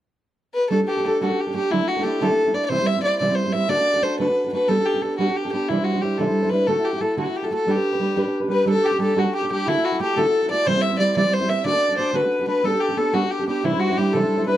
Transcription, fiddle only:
0.54 0.69 B4 medium
0.70 0.84 A4 medium
0.84 1.07 G4 medium
0.84 0.89 A4 medium
1.05 1.24 A4 medium
1.22 1.42 F#4 medium
1.41 1.55 G4 medium
1.56 1.73 G4 medium
1.71 1.89 E4 medium
1.88 2.03 F#4 medium
2.01 2.23 G4 medium
2.01 2.05 A4 medium
2.21 2.56 A4 medium
2.54 2.64 D5 medium
2.65 2.88 C5 medium
2.65 2.70 D5 medium
2.86 3.02 E5 loud
3.03 3.19 D5 medium
3.19 3.37 D5 medium
3.35 3.54 C5 medium
3.52 3.71 E5 medium
3.69 4.04 D5 loud
4.03 4.19 C5 medium
4.19 4.50 B4 medium
4.53 4.70 B4 medium
4.68 4.87 A4 medium
4.86 5.03 G4 medium
5.02 5.17 A4 medium
5.18 5.38 F#4 medium
5.36 5.51 G4 medium
5.52 5.70 G4 medium
5.69 5.86 E4 medium
5.84 6.03 F#4 medium
6.02 6.19 G4 medium
6.18 6.51 A4 medium
6.49 6.69 B4 medium
6.67 6.86 A4 medium
6.85 7.02 G4 medium
7.01 7.18 A4 medium
7.19 7.38 F#4 medium
7.37 7.45 G4 medium
7.44 7.52 A4 medium
7.54 7.72 A4 medium
7.71 8.36 G4 medium
8.52 8.67 B4 medium
8.69 8.87 A4 medium
8.86 9.01 G4 medium
9.01 9.20 A4 medium
9.19 9.34 F#4 medium
9.35 9.50 G4 medium
9.52 9.70 G4 medium
9.68 9.86 E4 medium
9.85 10.00 F#4 medium
10.02 10.19 G4 medium
10.18 10.50 A4 medium
10.50 10.68 D5 loud
10.67 10.83 C5 loud
10.81 10.98 E5 loud
10.99 11.14 D5 medium
11.17 11.35 D5 medium
11.33 11.51 C5 medium
11.49 11.66 E5 medium
11.66 11.97 D5 loud
11.97 12.17 C5 medium
12.16 12.47 B4 medium
12.48 12.66 B4 medium
12.65 12.82 A4 medium
12.81 12.99 G4 medium
12.97 13.15 A4 medium
13.14 13.32 F#4 medium
13.31 13.47 G4 medium
13.48 13.67 G4 medium
13.65 13.81 E4 medium
13.80 13.99 F#4 medium
13.97 14.15 G4 medium
14.13 14.46 A4 medium
14.46 14.57 B4 medium

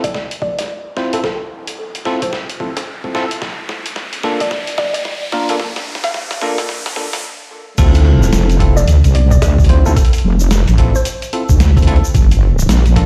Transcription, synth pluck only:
0.04 0.21 D5 medium
0.42 0.53 D5 medium
0.59 0.66 D5 medium
1.14 1.20 A4 medium
1.24 1.35 A4 medium
2.22 2.98 C5 medium
4.41 4.58 D5 medium
4.78 4.89 D5 medium
4.94 5.01 D5 medium
6.04 6.42 F5 medium
8.77 8.94 D5 medium
9.15 9.26 D5 medium
9.31 9.38 D5 medium
9.86 9.93 A4 medium
9.96 10.07 A4 medium
10.96 11.71 C5 medium

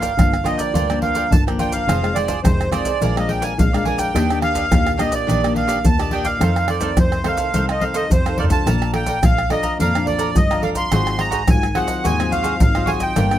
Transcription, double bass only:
0.17 0.42 G1 medium
0.74 1.23 D2 medium
1.31 1.79 G1 medium
1.87 2.36 F1 medium
2.45 2.69 F1 medium
3.01 3.50 A#1 medium
3.58 4.06 A#1 medium
4.14 4.63 D#2 loud
4.71 4.95 D#2 medium
5.27 5.76 A#1 medium
5.84 6.32 D#2 medium
6.41 6.89 F2 loud
6.97 7.21 F2 medium
7.54 8.02 C2 medium
8.10 8.58 F2 medium
8.66 9.15 A#1 loud
9.23 9.47 A#1 medium
9.79 10.28 F2 medium
10.36 10.84 G1 medium
10.92 11.40 G#1 loud
11.49 11.73 G#1 medium
12.05 12.53 D#2 medium
12.60 13.09 G#1 medium
13.17 13.39 G1 loud

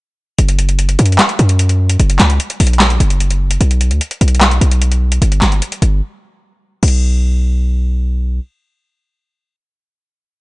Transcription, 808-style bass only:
0.39 0.97 F#1 loud
0.99 1.18 F#2 loud
1.39 1.97 F#2 loud
2.00 2.19 F#1 loud
2.20 2.39 C#2 loud
2.60 2.99 A#1 loud
3.00 3.58 F#1 loud
3.61 3.92 B1 loud
3.91 4.00 D2 loud
4.21 4.60 B1 loud
4.61 5.19 B1 loud
5.22 5.41 G1 loud
5.42 5.61 G1 loud
5.82 6.01 G1 loud
6.83 8.40 B1 loud

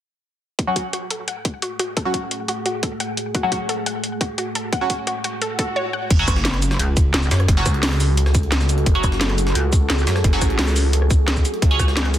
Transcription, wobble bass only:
6.28 6.78 F#1 loud
6.79 7.13 C#2 medium
7.14 7.30 C#2 loud
7.31 7.47 F#2 loud
9.04 9.54 F#1 loud
9.55 9.88 C#2 loud
9.90 10.06 C#2 loud
10.07 10.23 F#2 loud
11.79 12.19 C#2 loud

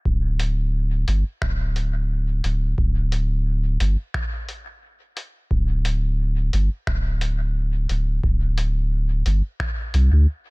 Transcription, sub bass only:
0.06 1.05 D1 loud
1.08 1.24 G1 medium
1.42 2.41 D1 medium
2.44 2.74 D1 medium
2.78 3.77 D1 loud
3.80 3.96 G1 medium
5.51 6.50 D1 loud
6.53 6.69 G1 medium
6.87 7.86 D1 medium
7.90 8.20 D1 medium
8.23 9.23 D1 loud
9.26 9.42 G1 medium
9.94 10.10 C2 loud
10.12 10.26 D2 medium

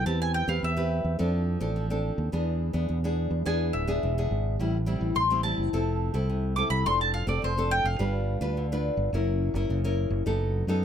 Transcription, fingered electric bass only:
0.06 0.42 E2 medium
0.48 0.60 E2 medium
0.63 0.99 E2 medium
1.04 1.17 E2 medium
1.20 1.56 F2 medium
1.61 2.10 A1 medium
2.18 2.30 D#2 medium
2.33 2.69 E2 loud
2.74 2.87 E2 medium
2.90 3.26 E2 medium
3.31 3.43 E2 medium
3.46 3.71 E2 medium
3.74 4.00 D1 medium
4.03 4.29 E1 medium
4.31 4.57 G#1 medium
4.59 4.96 A1 medium
5.01 5.13 A1 medium
5.16 5.52 A1 medium
5.58 5.70 F#1 medium
5.73 6.09 F1 medium
6.14 6.63 C2 medium
6.70 6.83 C2 medium
6.86 7.22 F1 medium
7.27 7.40 F1 medium
7.43 7.79 F1 medium
7.84 7.97 F1 medium
8.00 8.36 G1 medium
8.41 8.89 D2 medium
8.97 9.10 G1 medium
9.13 9.49 F#1 loud
9.54 9.66 F#1 loud
9.69 10.05 F#1 medium
10.10 10.23 F#1 medium
10.26 10.62 F#1 medium
10.67 10.85 F#2 medium

